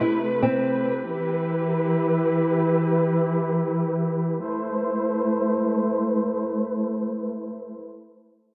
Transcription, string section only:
0.00 1.03 C3 medium
0.00 1.03 A3 medium
0.00 1.03 B4 medium
1.06 4.41 E3 medium
1.06 4.41 E4 medium
1.06 4.41 G4 medium
1.06 4.41 B4 medium
4.44 7.80 A3 medium
4.44 7.80 E4 medium
4.44 7.80 B4 medium
4.44 7.80 C5 medium

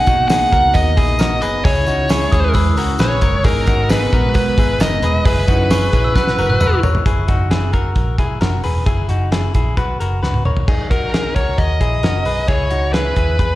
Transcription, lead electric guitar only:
0.00 0.27 F#5 medium
0.28 0.75 F#5 medium
0.74 1.41 D#5 medium
1.42 1.63 D#5 medium
1.65 2.51 C#5 medium
3.00 3.42 C#5 medium
3.45 3.90 A#4 medium
3.90 4.34 B4 medium
4.35 4.82 B4 loud
4.80 5.22 D#5 loud
5.26 6.79 B4 medium
10.91 11.33 A#4 medium
11.36 11.59 C#5 medium
11.58 12.51 D#5 medium
12.48 12.93 C#5 medium
12.93 13.55 B4 medium

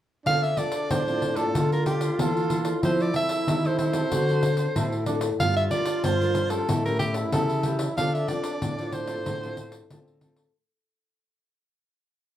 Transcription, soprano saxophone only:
0.26 0.44 F5 loud
0.43 0.59 E5 medium
0.58 0.92 D5 medium
0.91 1.38 C5 medium
1.36 1.70 A4 medium
1.73 1.86 A#4 medium
1.86 2.22 G4 medium
2.21 2.68 A4 medium
2.85 3.03 C5 medium
3.02 3.15 D5 medium
3.16 3.68 E5 medium
3.66 3.79 C5 medium
3.79 5.04 C5 medium
5.40 5.55 F5 loud
5.57 5.64 E5 medium
5.71 6.05 D5 medium
6.04 6.52 C5 medium
6.50 6.84 A4 medium
6.85 6.99 A#4 medium
6.99 7.14 G4 medium
7.33 7.78 A4 medium
7.97 8.15 F5 medium
8.14 8.30 E5 medium
8.28 8.95 D5 medium
8.93 9.90 C5 medium

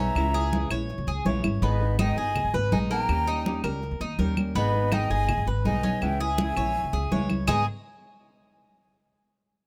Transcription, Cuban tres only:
0.00 0.33 C#4 medium
0.34 0.70 G#4 medium
0.71 1.06 C#5 medium
1.08 1.25 G#4 medium
1.26 1.61 C#5 medium
1.63 1.98 B3 medium
1.99 2.17 D#4 medium
2.18 2.53 G#4 medium
2.54 2.72 B4 medium
2.72 2.90 D#4 medium
2.91 3.26 A#3 medium
3.27 3.63 D#4 medium
3.64 3.99 A#4 medium
4.01 4.18 D#4 medium
4.19 4.54 A#4 medium
4.56 4.91 B3 medium
4.93 5.10 D#4 medium
5.11 5.46 G#4 medium
5.47 5.65 B4 medium
5.65 5.83 D#4 medium
5.83 6.19 C#4 medium
6.20 6.56 G#4 medium
6.57 6.92 C#5 medium
6.93 7.11 G#4 medium
7.12 7.47 C#5 medium
7.47 7.65 G#3 medium
7.47 7.65 D#4 medium
7.47 7.65 G#4 loud

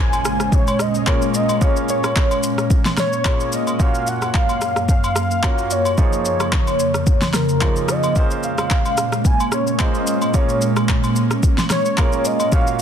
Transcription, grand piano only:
0.00 0.31 A#3 medium
0.00 0.34 C#4 medium
0.00 0.31 F4 medium
0.00 0.31 G#4 medium
0.00 0.32 C5 medium
1.07 1.52 A#3 medium
1.07 1.52 C#4 medium
1.07 1.52 F4 medium
1.07 1.52 G#4 medium
1.07 1.52 A#4 medium
1.61 2.49 A#3 medium
1.61 2.49 C#4 medium
1.61 2.49 F4 medium
1.61 2.50 G#4 medium
1.61 2.50 C#5 medium
3.25 3.70 A#3 medium
3.25 3.70 C#4 medium
3.25 3.70 F4 medium
3.25 3.70 G#4 medium
3.25 3.70 C#5 medium
3.79 4.67 A#3 medium
3.79 4.67 C#4 medium
3.79 4.68 F4 medium
3.79 4.68 F#4 medium
3.79 4.68 C#5 medium
5.43 5.88 A#3 medium
5.43 5.88 C#4 medium
5.43 5.88 F4 medium
5.43 5.88 F#4 medium
5.43 5.88 C#5 medium
5.98 6.86 F3 medium
5.98 6.86 A#3 medium
5.98 6.86 D#4 medium
5.98 6.86 F4 medium
5.98 6.86 G#4 medium
5.98 6.86 C#5 medium
7.61 8.06 F3 medium
7.61 8.06 A#3 medium
7.61 8.06 D#4 medium
7.61 8.06 F4 medium
7.61 8.07 G#4 medium
7.61 8.07 C#5 medium
8.16 9.04 A#3 medium
8.16 9.04 C#4 medium
8.16 9.04 F4 medium
8.16 9.04 G#4 medium
8.16 9.04 C5 medium
9.79 10.24 A#3 medium
9.79 10.24 C#4 medium
9.79 10.24 F4 medium
9.79 10.25 G#4 medium
9.79 10.25 C5 medium
10.34 11.22 A#3 medium
10.34 11.22 C#4 medium
10.34 11.22 F4 medium
10.34 11.22 G#4 medium
10.34 11.22 C#5 medium
11.98 12.42 A#3 medium
11.98 12.43 C#4 medium
11.98 12.43 F4 medium
11.98 12.43 G#4 medium
11.98 12.43 A#4 medium
12.52 12.82 A#3 medium
12.52 12.82 C#4 medium
12.52 12.82 F4 medium
12.52 12.82 F#4 medium
12.52 12.82 C#5 medium

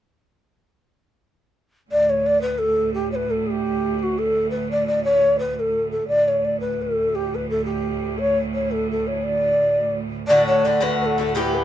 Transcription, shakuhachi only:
1.92 2.11 D5 loud
2.10 2.28 C#5 medium
2.26 2.41 D5 medium
2.41 2.60 B4 medium
2.59 2.93 A4 medium
2.94 3.11 G4 medium
3.12 3.32 B4 medium
3.12 3.17 C#5 medium
3.31 3.48 A4 medium
3.47 3.99 G4 medium
3.47 3.52 G#4 medium
3.99 4.20 F#4 medium
3.99 4.04 G4 medium
4.18 4.50 A4 medium
4.51 4.69 B4 medium
4.71 4.86 D5 medium
4.87 5.02 D5 medium
5.04 5.37 C#5 loud
5.39 5.55 B4 medium
5.55 5.61 B4 medium
5.60 5.91 A4 medium
5.91 6.07 A4 medium
6.08 6.30 D5 loud
6.28 6.46 C#5 medium
6.45 6.60 D5 medium
6.60 6.83 B4 medium
6.82 7.17 A4 medium
7.15 7.37 G4 medium
7.35 7.49 B4 medium
7.50 7.64 A4 medium
7.65 8.20 G4 medium
8.19 8.38 C#5 loud
8.54 8.73 C#5 medium
8.72 8.91 A4 medium
8.91 9.09 A4 medium
9.07 9.25 C#5 medium
9.24 9.96 D5 medium
10.28 10.46 D5 loud
10.47 10.67 C#5 medium
10.65 10.85 D5 medium
10.83 11.01 B4 medium
11.01 11.07 B4 medium
11.06 11.32 A4 medium
11.35 11.40 G#4 medium
11.39 11.56 G4 medium
11.54 11.64 B4 medium

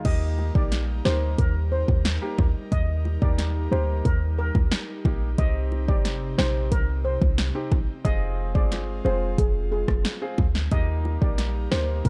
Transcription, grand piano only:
0.05 0.51 A#3 medium
0.05 0.51 D#4 medium
0.05 0.51 G4 loud
0.55 1.01 A#3 medium
0.55 1.01 D#4 medium
0.55 1.01 G4 medium
1.05 1.36 A#3 medium
1.05 1.36 D#4 medium
1.05 1.36 G4 medium
2.22 2.44 A#3 medium
2.22 2.44 D#4 medium
2.22 2.44 G4 medium
3.22 3.68 A#3 medium
3.22 3.68 D#4 medium
3.22 3.68 G4 medium
3.72 4.02 A#3 medium
3.72 4.02 D#4 medium
3.72 4.03 G4 medium
5.05 5.27 A#3 medium
5.05 5.27 D#4 medium
5.05 5.27 G4 medium
5.38 5.84 C4 medium
5.38 5.84 D#4 medium
5.38 5.85 G4 loud
5.88 6.34 C4 medium
5.88 6.34 D#4 medium
5.88 6.35 G4 medium
6.38 6.69 C4 medium
6.38 6.69 D#4 medium
6.38 6.69 G4 medium
7.55 7.77 C4 medium
7.55 7.77 D#4 medium
7.55 7.77 G4 medium
8.05 8.51 C4 medium
8.05 8.51 F4 medium
8.05 8.51 G#4 loud
8.55 9.01 C4 medium
8.55 9.01 F4 medium
8.55 9.01 G#4 medium
9.05 9.35 C4 medium
9.05 9.36 F4 medium
9.05 9.36 G#4 medium
10.22 10.44 C4 medium
10.22 10.44 F4 medium
10.22 10.44 G#4 medium
10.71 11.18 A#3 medium
10.71 11.18 D#4 medium
10.71 11.18 G4 loud
11.21 11.67 A#3 medium
11.21 11.68 D#4 medium
11.21 11.68 G4 medium
11.71 12.02 A#3 medium
11.71 12.02 D#4 medium
11.71 12.02 G4 medium

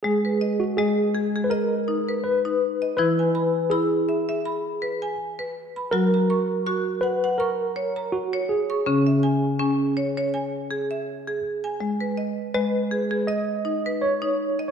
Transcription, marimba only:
0.04 0.41 G#3 medium
0.25 0.78 B4 soft
0.41 0.77 D#5 soft
0.78 1.15 G#3 medium
0.78 1.35 D#5 medium
1.15 1.34 G#4 medium
1.36 1.72 G#4 medium
1.51 2.08 D#5 medium
1.88 2.25 D#4 medium
2.09 2.62 B4 medium
2.45 2.82 D#4 medium
2.82 3.19 D#5 medium
2.98 5.89 E3 medium
2.98 3.35 E4 medium
3.19 3.72 G#5 soft
3.35 3.70 B5 medium
3.71 4.08 E4 medium
3.71 4.29 B5 medium
4.09 4.28 E5 medium
4.29 4.66 E5 medium
4.45 5.03 B5 medium
4.82 5.19 B4 medium
5.02 5.55 G#5 medium
5.39 5.76 B4 medium
5.76 6.13 B5 medium
5.93 8.83 F#3 medium
5.93 6.29 F#4 medium
6.14 6.67 A#5 soft
6.30 6.65 C#6 medium
6.66 7.03 F#4 medium
6.66 7.23 C#6 medium
7.03 7.23 F#5 medium
7.24 7.60 F#5 medium
7.40 7.97 C#6 medium
7.76 8.13 C#5 medium
7.96 8.50 A#5 medium
8.33 8.70 C#5 medium
8.70 9.07 C#6 medium
8.86 11.77 C#3 medium
8.86 9.23 C#4 medium
9.07 9.60 E5 soft
9.23 9.58 G#5 medium
9.59 9.97 C#4 medium
9.59 10.17 G#5 medium
9.97 10.16 C#5 medium
10.17 10.54 C#5 medium
10.34 10.91 G#5 medium
10.71 11.07 G#4 medium
10.91 11.44 E5 medium
11.27 11.64 G#4 medium
11.64 12.01 G#5 medium
11.80 12.53 G#3 medium
12.01 12.54 B4 medium
12.17 12.53 D#5 medium
12.54 12.91 G#3 medium
12.54 13.12 D#5 medium
12.91 13.10 G#4 medium
13.11 13.48 G#4 medium
13.28 13.85 D#5 medium
13.65 14.02 D#4 medium
13.86 14.39 B4 medium
14.22 14.59 D#4 medium
14.59 14.71 D#5 medium

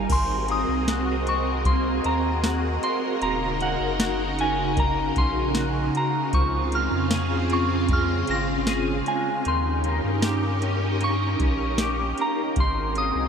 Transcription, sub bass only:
0.10 0.65 G#1 loud
0.68 2.01 C2 medium
2.05 2.79 D#2 medium
3.22 3.77 D#1 loud
3.80 5.12 F#1 medium
5.17 5.91 A#1 medium
6.33 6.89 C#2 loud
6.91 8.24 F2 medium
8.29 9.03 G#1 medium
9.46 10.01 D#2 loud
10.04 11.36 G2 medium
11.40 12.14 A#1 medium
12.57 13.12 G#1 loud
13.15 13.28 C2 medium

